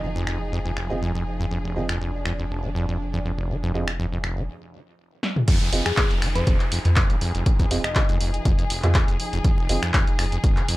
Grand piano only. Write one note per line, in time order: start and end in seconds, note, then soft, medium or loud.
0.90 0.97 C4 medium
0.90 0.97 F4 medium
0.90 0.97 G#4 medium
0.90 0.97 D#5 loud
1.76 1.84 C4 medium
1.76 1.84 F4 medium
1.76 1.84 G#4 medium
1.76 1.84 D#5 medium
3.74 3.83 C4 medium
3.74 3.83 F4 medium
3.74 3.83 G#4 medium
3.74 3.83 D#5 medium
5.73 5.81 C4 medium
5.73 5.81 F4 medium
5.73 5.81 G#4 medium
5.73 5.81 D#5 medium
7.71 7.79 C4 medium
7.71 7.79 F4 medium
7.71 7.79 G#4 medium
7.71 7.79 D#5 medium
8.83 8.91 C4 loud
8.83 8.91 F4 loud
8.83 8.91 G#4 medium
8.83 8.91 D#5 loud
9.69 9.78 C4 medium
9.69 9.78 F4 medium
9.69 9.78 G#4 medium
9.69 9.78 D#5 medium